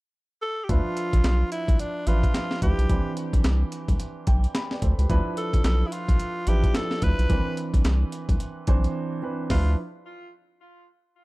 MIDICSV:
0, 0, Header, 1, 5, 480
1, 0, Start_track
1, 0, Tempo, 550459
1, 604, Time_signature, 4, 2, 24, 8
1, 9804, End_track
2, 0, Start_track
2, 0, Title_t, "Tenor saxophone"
2, 0, Program_c, 0, 66
2, 367, Note_on_c, 0, 69, 104
2, 561, Note_on_c, 0, 67, 67
2, 574, Note_off_c, 0, 69, 0
2, 607, Note_on_c, 0, 65, 99
2, 620, Note_off_c, 0, 67, 0
2, 1321, Note_off_c, 0, 65, 0
2, 1326, Note_on_c, 0, 64, 94
2, 1567, Note_on_c, 0, 62, 82
2, 1580, Note_off_c, 0, 64, 0
2, 1808, Note_on_c, 0, 65, 93
2, 1821, Note_off_c, 0, 62, 0
2, 2286, Note_off_c, 0, 65, 0
2, 2290, Note_on_c, 0, 67, 88
2, 2734, Note_off_c, 0, 67, 0
2, 4686, Note_on_c, 0, 69, 89
2, 4909, Note_off_c, 0, 69, 0
2, 4929, Note_on_c, 0, 69, 89
2, 5118, Note_on_c, 0, 64, 66
2, 5131, Note_off_c, 0, 69, 0
2, 5168, Note_on_c, 0, 65, 94
2, 5181, Note_off_c, 0, 64, 0
2, 5650, Note_on_c, 0, 67, 85
2, 5663, Note_off_c, 0, 65, 0
2, 5889, Note_on_c, 0, 69, 94
2, 5902, Note_off_c, 0, 67, 0
2, 6130, Note_on_c, 0, 71, 109
2, 6143, Note_off_c, 0, 69, 0
2, 6607, Note_off_c, 0, 71, 0
2, 8289, Note_on_c, 0, 65, 85
2, 8510, Note_off_c, 0, 65, 0
2, 9804, End_track
3, 0, Start_track
3, 0, Title_t, "Grand piano"
3, 0, Program_c, 1, 0
3, 603, Note_on_c, 1, 53, 72
3, 606, Note_on_c, 1, 62, 65
3, 610, Note_on_c, 1, 76, 64
3, 613, Note_on_c, 1, 71, 81
3, 769, Control_c, 1, 64, 127
3, 1316, Note_off_c, 1, 53, 0
3, 1318, Note_off_c, 1, 62, 0
3, 1320, Note_off_c, 1, 76, 0
3, 1322, Note_off_c, 1, 71, 0
3, 1803, Note_on_c, 1, 53, 72
3, 1807, Note_on_c, 1, 62, 65
3, 1810, Note_on_c, 1, 76, 62
3, 1814, Note_on_c, 1, 71, 83
3, 2183, Note_off_c, 1, 53, 0
3, 2185, Note_off_c, 1, 62, 0
3, 2187, Note_off_c, 1, 76, 0
3, 2188, Note_off_c, 1, 71, 0
3, 2282, Note_on_c, 1, 53, 61
3, 2286, Note_on_c, 1, 62, 50
3, 2290, Note_on_c, 1, 64, 57
3, 2293, Note_on_c, 1, 71, 71
3, 2474, Note_off_c, 1, 53, 0
3, 2476, Note_off_c, 1, 62, 0
3, 2478, Note_off_c, 1, 64, 0
3, 2479, Note_off_c, 1, 71, 0
3, 2523, Note_on_c, 1, 52, 73
3, 2526, Note_on_c, 1, 60, 68
3, 2529, Note_on_c, 1, 62, 62
3, 2533, Note_on_c, 1, 71, 75
3, 2536, Control_c, 1, 64, 0
3, 2690, Control_c, 1, 64, 127
3, 3236, Note_off_c, 1, 52, 0
3, 3238, Note_off_c, 1, 60, 0
3, 3240, Note_off_c, 1, 62, 0
3, 3241, Note_off_c, 1, 71, 0
3, 3728, Note_on_c, 1, 79, 74
3, 3950, Note_off_c, 1, 79, 0
3, 3969, Note_on_c, 1, 83, 66
3, 4113, Note_on_c, 1, 74, 63
3, 4120, Note_on_c, 1, 71, 52
3, 4202, Note_off_c, 1, 74, 0
3, 4205, Note_off_c, 1, 71, 0
3, 4209, Note_on_c, 1, 72, 66
3, 4214, Note_on_c, 1, 69, 52
3, 4344, Note_off_c, 1, 72, 0
3, 4347, Note_off_c, 1, 69, 0
3, 4354, Note_on_c, 1, 71, 59
3, 4359, Note_on_c, 1, 67, 51
3, 4413, Note_off_c, 1, 83, 0
3, 4440, Note_off_c, 1, 71, 0
3, 4441, Note_on_c, 1, 53, 91
3, 4445, Note_on_c, 1, 62, 82
3, 4449, Note_on_c, 1, 64, 77
3, 4453, Note_on_c, 1, 71, 101
3, 4455, Control_c, 1, 64, 0
3, 4582, Note_off_c, 1, 67, 0
3, 4610, Control_c, 1, 64, 127
3, 5155, Note_off_c, 1, 53, 0
3, 5158, Note_off_c, 1, 62, 0
3, 5160, Note_off_c, 1, 64, 0
3, 5161, Note_off_c, 1, 71, 0
3, 5642, Note_on_c, 1, 53, 73
3, 5646, Note_on_c, 1, 62, 68
3, 5650, Note_on_c, 1, 64, 67
3, 5653, Note_on_c, 1, 71, 84
3, 6022, Note_off_c, 1, 53, 0
3, 6024, Note_off_c, 1, 62, 0
3, 6026, Note_off_c, 1, 64, 0
3, 6028, Note_off_c, 1, 71, 0
3, 6124, Note_on_c, 1, 53, 65
3, 6127, Note_on_c, 1, 62, 54
3, 6131, Note_on_c, 1, 64, 55
3, 6134, Note_on_c, 1, 71, 63
3, 6315, Note_off_c, 1, 53, 0
3, 6316, Note_off_c, 1, 62, 0
3, 6318, Note_off_c, 1, 64, 0
3, 6320, Note_off_c, 1, 71, 0
3, 6362, Note_on_c, 1, 52, 78
3, 6366, Note_on_c, 1, 60, 69
3, 6370, Note_on_c, 1, 62, 64
3, 6373, Note_on_c, 1, 70, 61
3, 6376, Control_c, 1, 64, 0
3, 6430, Note_on_c, 1, 71, 84
3, 6437, Note_off_c, 1, 70, 0
3, 6548, Control_c, 1, 64, 127
3, 7076, Note_off_c, 1, 52, 0
3, 7078, Note_off_c, 1, 60, 0
3, 7080, Note_off_c, 1, 62, 0
3, 7110, Note_off_c, 1, 71, 0
3, 7564, Note_on_c, 1, 52, 91
3, 7568, Note_on_c, 1, 60, 79
3, 7571, Note_on_c, 1, 62, 80
3, 7575, Note_on_c, 1, 72, 96
3, 7943, Note_off_c, 1, 52, 0
3, 7945, Note_off_c, 1, 60, 0
3, 7947, Note_off_c, 1, 62, 0
3, 7949, Note_off_c, 1, 72, 0
3, 8043, Note_on_c, 1, 52, 70
3, 8047, Note_on_c, 1, 60, 66
3, 8051, Note_on_c, 1, 62, 61
3, 8054, Note_on_c, 1, 71, 80
3, 8234, Note_off_c, 1, 52, 0
3, 8236, Note_off_c, 1, 60, 0
3, 8238, Note_off_c, 1, 62, 0
3, 8240, Note_off_c, 1, 71, 0
3, 8289, Note_on_c, 1, 53, 78
3, 8289, Note_on_c, 1, 64, 72
3, 8289, Note_on_c, 1, 71, 91
3, 8290, Note_on_c, 1, 62, 75
3, 8298, Control_c, 1, 64, 0
3, 8510, Note_off_c, 1, 53, 0
3, 8510, Note_off_c, 1, 62, 0
3, 8510, Note_off_c, 1, 64, 0
3, 8510, Note_off_c, 1, 71, 0
3, 9804, End_track
4, 0, Start_track
4, 0, Title_t, "Analog synth bass"
4, 0, Program_c, 2, 38
4, 605, Note_on_c, 2, 38, 114
4, 707, Note_off_c, 2, 38, 0
4, 988, Note_on_c, 2, 33, 87
4, 1056, Note_off_c, 2, 33, 0
4, 1085, Note_on_c, 2, 35, 97
4, 1255, Note_off_c, 2, 35, 0
4, 1468, Note_on_c, 2, 35, 87
4, 1536, Note_off_c, 2, 35, 0
4, 1805, Note_on_c, 2, 33, 96
4, 1975, Note_off_c, 2, 33, 0
4, 2286, Note_on_c, 2, 38, 84
4, 2388, Note_off_c, 2, 38, 0
4, 2430, Note_on_c, 2, 35, 84
4, 2497, Note_off_c, 2, 35, 0
4, 2525, Note_on_c, 2, 36, 115
4, 2627, Note_off_c, 2, 36, 0
4, 2907, Note_on_c, 2, 35, 79
4, 2975, Note_off_c, 2, 35, 0
4, 3005, Note_on_c, 2, 36, 87
4, 3175, Note_off_c, 2, 36, 0
4, 3388, Note_on_c, 2, 36, 92
4, 3456, Note_off_c, 2, 36, 0
4, 3726, Note_on_c, 2, 35, 92
4, 3896, Note_off_c, 2, 35, 0
4, 4205, Note_on_c, 2, 38, 84
4, 4307, Note_off_c, 2, 38, 0
4, 4348, Note_on_c, 2, 37, 90
4, 4416, Note_off_c, 2, 37, 0
4, 4445, Note_on_c, 2, 38, 113
4, 4547, Note_off_c, 2, 38, 0
4, 4827, Note_on_c, 2, 33, 81
4, 4896, Note_off_c, 2, 33, 0
4, 4922, Note_on_c, 2, 35, 89
4, 5093, Note_off_c, 2, 35, 0
4, 5307, Note_on_c, 2, 35, 78
4, 5375, Note_off_c, 2, 35, 0
4, 5642, Note_on_c, 2, 33, 101
4, 5814, Note_off_c, 2, 33, 0
4, 6124, Note_on_c, 2, 38, 89
4, 6227, Note_off_c, 2, 38, 0
4, 6268, Note_on_c, 2, 35, 86
4, 6336, Note_off_c, 2, 35, 0
4, 6364, Note_on_c, 2, 36, 112
4, 6467, Note_off_c, 2, 36, 0
4, 6747, Note_on_c, 2, 35, 83
4, 6816, Note_off_c, 2, 35, 0
4, 6843, Note_on_c, 2, 36, 87
4, 7014, Note_off_c, 2, 36, 0
4, 7228, Note_on_c, 2, 36, 96
4, 7296, Note_off_c, 2, 36, 0
4, 7567, Note_on_c, 2, 35, 96
4, 7736, Note_off_c, 2, 35, 0
4, 8285, Note_on_c, 2, 38, 100
4, 8508, Note_off_c, 2, 38, 0
4, 9804, End_track
5, 0, Start_track
5, 0, Title_t, "Drums"
5, 604, Note_on_c, 9, 36, 106
5, 604, Note_on_c, 9, 42, 59
5, 691, Note_off_c, 9, 36, 0
5, 691, Note_off_c, 9, 42, 0
5, 843, Note_on_c, 9, 42, 69
5, 931, Note_off_c, 9, 42, 0
5, 987, Note_on_c, 9, 36, 83
5, 989, Note_on_c, 9, 42, 56
5, 1074, Note_off_c, 9, 36, 0
5, 1077, Note_off_c, 9, 42, 0
5, 1081, Note_on_c, 9, 42, 54
5, 1084, Note_on_c, 9, 38, 106
5, 1091, Note_on_c, 9, 39, 84
5, 1169, Note_off_c, 9, 42, 0
5, 1171, Note_off_c, 9, 38, 0
5, 1178, Note_off_c, 9, 39, 0
5, 1324, Note_on_c, 9, 42, 74
5, 1411, Note_off_c, 9, 42, 0
5, 1467, Note_on_c, 9, 36, 95
5, 1471, Note_on_c, 9, 42, 49
5, 1555, Note_off_c, 9, 36, 0
5, 1558, Note_off_c, 9, 42, 0
5, 1565, Note_on_c, 9, 42, 76
5, 1652, Note_off_c, 9, 42, 0
5, 1802, Note_on_c, 9, 42, 75
5, 1890, Note_off_c, 9, 42, 0
5, 1949, Note_on_c, 9, 36, 98
5, 1951, Note_on_c, 9, 42, 49
5, 2036, Note_off_c, 9, 36, 0
5, 2039, Note_off_c, 9, 42, 0
5, 2044, Note_on_c, 9, 38, 98
5, 2046, Note_on_c, 9, 42, 62
5, 2051, Note_on_c, 9, 39, 84
5, 2131, Note_off_c, 9, 38, 0
5, 2133, Note_off_c, 9, 42, 0
5, 2139, Note_off_c, 9, 39, 0
5, 2187, Note_on_c, 9, 38, 74
5, 2274, Note_off_c, 9, 38, 0
5, 2285, Note_on_c, 9, 36, 94
5, 2285, Note_on_c, 9, 42, 75
5, 2372, Note_off_c, 9, 42, 0
5, 2373, Note_off_c, 9, 36, 0
5, 2432, Note_on_c, 9, 42, 51
5, 2519, Note_off_c, 9, 42, 0
5, 2524, Note_on_c, 9, 36, 104
5, 2524, Note_on_c, 9, 42, 61
5, 2612, Note_off_c, 9, 36, 0
5, 2612, Note_off_c, 9, 42, 0
5, 2763, Note_on_c, 9, 42, 67
5, 2850, Note_off_c, 9, 42, 0
5, 2907, Note_on_c, 9, 36, 85
5, 2909, Note_on_c, 9, 42, 60
5, 2994, Note_off_c, 9, 36, 0
5, 2997, Note_off_c, 9, 42, 0
5, 3001, Note_on_c, 9, 42, 59
5, 3003, Note_on_c, 9, 38, 110
5, 3010, Note_on_c, 9, 39, 93
5, 3088, Note_off_c, 9, 42, 0
5, 3090, Note_off_c, 9, 38, 0
5, 3098, Note_off_c, 9, 39, 0
5, 3244, Note_on_c, 9, 42, 71
5, 3331, Note_off_c, 9, 42, 0
5, 3387, Note_on_c, 9, 36, 96
5, 3391, Note_on_c, 9, 42, 53
5, 3474, Note_off_c, 9, 36, 0
5, 3478, Note_off_c, 9, 42, 0
5, 3485, Note_on_c, 9, 42, 71
5, 3572, Note_off_c, 9, 42, 0
5, 3722, Note_on_c, 9, 42, 79
5, 3726, Note_on_c, 9, 36, 103
5, 3810, Note_off_c, 9, 42, 0
5, 3813, Note_off_c, 9, 36, 0
5, 3871, Note_on_c, 9, 42, 46
5, 3958, Note_off_c, 9, 42, 0
5, 3965, Note_on_c, 9, 38, 107
5, 3966, Note_on_c, 9, 42, 66
5, 3972, Note_on_c, 9, 39, 81
5, 4052, Note_off_c, 9, 38, 0
5, 4053, Note_off_c, 9, 42, 0
5, 4059, Note_off_c, 9, 39, 0
5, 4107, Note_on_c, 9, 38, 70
5, 4195, Note_off_c, 9, 38, 0
5, 4203, Note_on_c, 9, 42, 70
5, 4205, Note_on_c, 9, 36, 90
5, 4291, Note_off_c, 9, 42, 0
5, 4292, Note_off_c, 9, 36, 0
5, 4351, Note_on_c, 9, 42, 52
5, 4438, Note_off_c, 9, 42, 0
5, 4444, Note_on_c, 9, 36, 112
5, 4444, Note_on_c, 9, 42, 59
5, 4531, Note_off_c, 9, 36, 0
5, 4531, Note_off_c, 9, 42, 0
5, 4683, Note_on_c, 9, 42, 70
5, 4770, Note_off_c, 9, 42, 0
5, 4826, Note_on_c, 9, 36, 86
5, 4829, Note_on_c, 9, 42, 62
5, 4914, Note_off_c, 9, 36, 0
5, 4916, Note_off_c, 9, 42, 0
5, 4920, Note_on_c, 9, 42, 57
5, 4922, Note_on_c, 9, 38, 104
5, 4930, Note_on_c, 9, 39, 92
5, 5007, Note_off_c, 9, 42, 0
5, 5009, Note_off_c, 9, 38, 0
5, 5017, Note_off_c, 9, 39, 0
5, 5163, Note_on_c, 9, 42, 71
5, 5250, Note_off_c, 9, 42, 0
5, 5306, Note_on_c, 9, 36, 90
5, 5309, Note_on_c, 9, 42, 53
5, 5393, Note_off_c, 9, 36, 0
5, 5397, Note_off_c, 9, 42, 0
5, 5402, Note_on_c, 9, 42, 72
5, 5489, Note_off_c, 9, 42, 0
5, 5640, Note_on_c, 9, 42, 82
5, 5727, Note_off_c, 9, 42, 0
5, 5787, Note_on_c, 9, 36, 98
5, 5788, Note_on_c, 9, 42, 46
5, 5875, Note_off_c, 9, 36, 0
5, 5876, Note_off_c, 9, 42, 0
5, 5881, Note_on_c, 9, 38, 103
5, 5883, Note_on_c, 9, 42, 65
5, 5889, Note_on_c, 9, 39, 86
5, 5968, Note_off_c, 9, 38, 0
5, 5970, Note_off_c, 9, 42, 0
5, 5976, Note_off_c, 9, 39, 0
5, 6024, Note_on_c, 9, 38, 72
5, 6111, Note_off_c, 9, 38, 0
5, 6121, Note_on_c, 9, 42, 74
5, 6124, Note_on_c, 9, 36, 95
5, 6208, Note_off_c, 9, 42, 0
5, 6211, Note_off_c, 9, 36, 0
5, 6270, Note_on_c, 9, 42, 53
5, 6357, Note_off_c, 9, 42, 0
5, 6362, Note_on_c, 9, 42, 57
5, 6363, Note_on_c, 9, 36, 106
5, 6450, Note_off_c, 9, 42, 0
5, 6451, Note_off_c, 9, 36, 0
5, 6603, Note_on_c, 9, 42, 64
5, 6690, Note_off_c, 9, 42, 0
5, 6747, Note_on_c, 9, 36, 86
5, 6750, Note_on_c, 9, 42, 59
5, 6834, Note_off_c, 9, 36, 0
5, 6837, Note_off_c, 9, 42, 0
5, 6841, Note_on_c, 9, 42, 60
5, 6843, Note_on_c, 9, 38, 106
5, 6851, Note_on_c, 9, 39, 86
5, 6928, Note_off_c, 9, 42, 0
5, 6930, Note_off_c, 9, 38, 0
5, 6938, Note_off_c, 9, 39, 0
5, 7083, Note_on_c, 9, 42, 68
5, 7171, Note_off_c, 9, 42, 0
5, 7227, Note_on_c, 9, 36, 99
5, 7231, Note_on_c, 9, 42, 55
5, 7314, Note_off_c, 9, 36, 0
5, 7318, Note_off_c, 9, 42, 0
5, 7325, Note_on_c, 9, 42, 67
5, 7412, Note_off_c, 9, 42, 0
5, 7562, Note_on_c, 9, 42, 75
5, 7566, Note_on_c, 9, 36, 104
5, 7649, Note_off_c, 9, 42, 0
5, 7653, Note_off_c, 9, 36, 0
5, 7711, Note_on_c, 9, 42, 47
5, 7799, Note_off_c, 9, 42, 0
5, 8284, Note_on_c, 9, 36, 93
5, 8284, Note_on_c, 9, 38, 96
5, 8284, Note_on_c, 9, 46, 76
5, 8372, Note_off_c, 9, 36, 0
5, 8372, Note_off_c, 9, 38, 0
5, 8372, Note_off_c, 9, 46, 0
5, 9804, End_track
0, 0, End_of_file